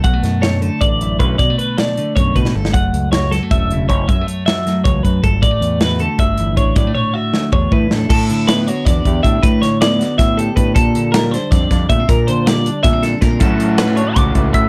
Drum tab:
CC |--------------|--------------|--------------|--------------|
HH |x-x-x-x-x-x-x-|x-x-x-x-x-x---|x-x-x-x-x-x-x-|x-x-x-x-x-x-x-|
SD |--o-o---------|----o------o-o|----o-o-------|----o-o-------|
T1 |--------------|--------------|--------------|--------------|
T2 |--------------|--------------|--------------|--------------|
BD |o-------o---o-|o-------o-o---|o-------o---o-|o-------o-o-o-|

CC |--------------|--------------|x-------------|--------------|
HH |x-x-x-x-x-x-x-|x-------------|--x-x-x-x-x-x-|x-x-x-x-x-x-x-|
SD |----o---------|------o-----o-|----o---o-----|--o-o-o-o-----|
T1 |--------------|--o-----------|--------------|--------------|
T2 |--------------|--------o-----|--------------|--------------|
BD |o-------o---o-|o-------o-o---|o-------o-o-o-|o-------o---o-|

CC |--------------|--------------|--------------|
HH |x-x-x-x-x-x-x-|x-x-x-x-x-x-x-|x-x-x-x-x-x-x-|
SD |----o-o-o-o---|----o---o-o-o-|----o---------|
T1 |--------------|--------------|--------------|
T2 |--------------|--------------|--------------|
BD |o-------o-o-o-|o-------o---o-|o-------o-o-o-|